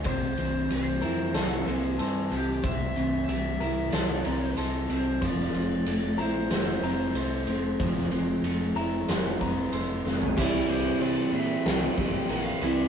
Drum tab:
CC |----------------|----------------|----------------|----------------|
RD |x-x-x-x-x-x-x-x-|x-x-x-x-x-x-x-x-|x-x-x-x-x-x-x-x-|x-x-x-x-x-x-x---|
SD |--------o-------|--------o-------|-o------o-------|-o------o-----o-|
FT |----------------|----------------|----------------|---------------o|
BD |o---------------|o---------------|o---------------|o---------o-----|

CC |x-x-x-x-x-x-x-x-|
RD |----------------|
SD |--------o-------|
FT |----------------|
BD |o---------o-----|